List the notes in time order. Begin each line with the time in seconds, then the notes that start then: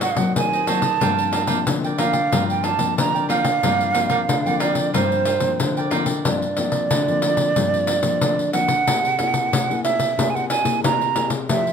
Already playing: G#2
0.01 F#4 G#4 C5 D#5 F#5, pandeiro
0.11 F5
0.17 F#3 A#3 C4 F#5, pandeiro
0.36 D#3 G#5, pandeiro
0.53 G#4 C5 D#5, pandeiro
0.67 F#3 A#3 C4 F#4 G#4 C5 D#5 A5, pandeiro
0.82 G#4 C5 D#5, pandeiro
1.01 G2 F3 A#3 C4 F4 A#4 D5 G5, pandeiro
1.19 pandeiro
1.32 F4 A#4 D5 G5, pandeiro
1.47 F3 A#3 C4 F4 A#4 D5 G5, pandeiro
1.67 D3, pandeiro
1.84 A#4 D5 G5, pandeiro
1.98 F3 A#3 C4 F4 A#4 D5 F5 G5, pandeiro
2.13 A#4 D5 G5, pandeiro
2.32 G2 F3 A#3 C4 F4 A#4 D5 G5, pandeiro
2.50 G5, pandeiro
2.63 F4 A#4 D5 G5 A5, pandeiro
2.78 F3 A#3 C4, pandeiro
2.97 D3 A#5, pandeiro
3.14 A#4 D5 G5, pandeiro
3.29 F3 A#3 C4 F4 A#4 D5 F5 G5, pandeiro
3.44 A#4 D5 G5, pandeiro
3.63 G2 F3 A#3 C4 F4 A#4 D5 G5, pandeiro
3.81 pandeiro
3.94 F3 A#3 C4 F4 A#4 D5 G5, pandeiro
4.10 F4 A#4 D5 G5, pandeiro
4.28 D3, pandeiro
4.45 F3 A#3 C4 A#4 D5 G5, pandeiro
4.60 F4 A#4 D5 G5, pandeiro
4.75 A#4 D5 G5, pandeiro
4.93 G2 F3 A#3 C4 F4 A#4 C5 D5 G5, pandeiro
5.12 pandeiro
5.25 F4 A#4 D5 G5, pandeiro
5.40 F3 A#3 C4, pandeiro
5.59 D3, pandeiro
5.77 A#4 D5 G5, pandeiro
5.91 F3 A#3 C4 F4 A#4 D5 G5, pandeiro
6.06 A#4 D5 G5, pandeiro
6.25 G2 F3 A#3 C4 D5, pandeiro
6.42 pandeiro
6.57 F3 A#3 C4, pandeiro
6.72 pandeiro
6.91 D3, pandeiro
7.08 F3 A#3 C4, pandeiro
7.22 pandeiro
7.37 pandeiro
7.56 G2 F3 A#3 C4, pandeiro
7.74 pandeiro
7.87 pandeiro
8.02 F3 A#3 C4, pandeiro
8.21 D3, pandeiro
8.39 pandeiro
8.53 F3 A#3 C4 F#5, pandeiro
8.68 pandeiro
8.87 C3 A#3 E4 G#4, pandeiro
9.05 pandeiro
9.18 A#3 E4 G#4, pandeiro
9.34 pandeiro
9.52 C3, pandeiro
9.70 A#3 E4 G#4, pandeiro
9.84 E5, pandeiro
9.99 pandeiro
10.18 C3 A#3 E4 G#4, pandeiro
10.30 G#5
10.35 F#5, pandeiro
10.50 G#5, pandeiro
10.64 A#3 E4 G#4, pandeiro
10.84 C3 A#5, pandeiro
11.01 pandeiro
11.15 A#3 E4 G#4, pandeiro
11.30 pandeiro
11.49 F3 A3 E4 G4 E5, pandeiro
11.67 pandeiro